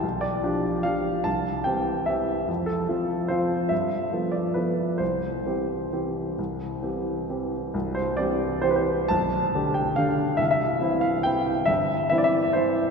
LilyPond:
\new Staff \with { instrumentName = "Grand piano" } { \time 3/4 \key c \major \tempo 4 = 139 << { r8 d''4. f''4 | a''4 g''4 e''4 | r8 a'4. c''4 | e''4. d''8 b'4 |
c''2.~ | c''2~ c''8 r8 | r8 c''8 d''4 \tuplet 3/2 { c''16 b'16 c''4 } | a''4. g''8 f''4 |
\tuplet 3/2 { e''16 f''16 e''4~ } e''8 f''8 g''4 | e''4 \tuplet 3/2 { e''16 d''16 e''4 } c''4 | } \\ { b,,4 <f d' g'>4 <f d' g'>4 | c,4 <e c' g'>4 <e c' g'>4 | f,4 <f c' f'>4 <f c' f'>4 | g,4 <f b a'>4 <f b a'>4 |
c,4 <e c' g'>4 <e c' g'>4 | c,4 <e c' g'>4 <e c' g'>4 | <c,, c,>4 <e c' g'>4 <e c' g'>4 | <b,,, b,,>4 <d d' g'>4 <d d' g'>4 |
<c,, c,>4 <e c' e'>4 <e c' e'>4 | <g,, g,>4 <e c' e'>4 <e c' e'>4 | } >> }